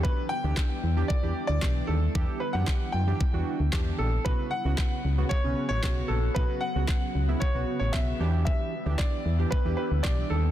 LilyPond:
<<
  \new Staff \with { instrumentName = "Grand piano" } { \time 4/4 \key e \dorian \tempo 4 = 114 b'8 g''4. d''8. d''8. a'8~ | a'8 b'16 fis''8. g''4. r8 a'8 | b'8 fis''4. cis''8. cis''8. a'8 | b'8 fis''4. cis''8. cis''16 e''4 |
e''4 d''4 b'8 b'8 d''8 a'8 | }
  \new Staff \with { instrumentName = "Synth keys" } { \time 4/4 \key e \dorian <e d' g'>8 r16 <e d' g'>8. r16 <e d' g'>16 r16 <e d' g'>8 r16 <e d' g'>8. r16 | <e d' g'>8 r16 <e d' g'>8. r16 <e d' g'>16 r16 <e d' fis'>8 r16 <e d' g'>8. r16 | <cis b fis'>8 r16 <cis b fis'>8. r16 <cis b fis'>16 r16 <cis b cis'>8 r16 <cis b fis'>8. r16 | <cis b fis'>8 r16 <cis b fis'>8. r16 <cis b e'>16 r16 <cis b fis'>8 r16 <cis b fis'>8 <e d' g'>8~ |
<e d' g'>8 r16 <e d' g'>8. r16 <e d' g'>16 r16 <e d' g'>8 r16 <e d' g'>8. r16 | }
  \new Staff \with { instrumentName = "Ambient pad" } { \clef bass \time 4/4 \key e \dorian << { <d g e'>1~ | <d g e'>1 | <cis fis fis'>1~ | <cis fis fis'>2.~ <cis fis fis'>8 <d g e'>8~ |
<d g e'>1 | } \\ { b1~ | b1 | b1~ | b1~ |
b1 | } >> }
  \new Staff \with { instrumentName = "FM bass" } { \clef bass \time 4/4 \key e \dorian r8. d,16 r8 e,8 r16 e,16 r16 d,16 b,,8 dis,8 | e,16 r8 fis,16 r8 fis,8 r16 e,16 r16 d,16 e,8 ais,,8 | b,,16 r8 cis,16 r8 cis,8 r16 b,,16 r16 a,,16 b,,8 ais,,8 | b,,16 r8 cis,16 r8 cis,8 r16 b,,16 r16 a,,16 b,,8 e,8~ |
e,16 r8 d,16 r8 e,8 r16 e,16 r16 d,16 b,,8 dis,8 | }
  \new DrumStaff \with { instrumentName = "Drums" } \drummode { \time 4/4 bd4 <hc bd sn>4 bd4 <hc bd sn>4 | bd4 <hc bd sn>4 bd4 <hc bd sn>4 | bd4 <hc bd sn>4 bd4 <hc bd sn>4 | bd4 <hc bd sn>4 bd4 <hc bd sn>4 |
bd4 <hc bd sn>4 bd4 <hc bd sn>4 | }
>>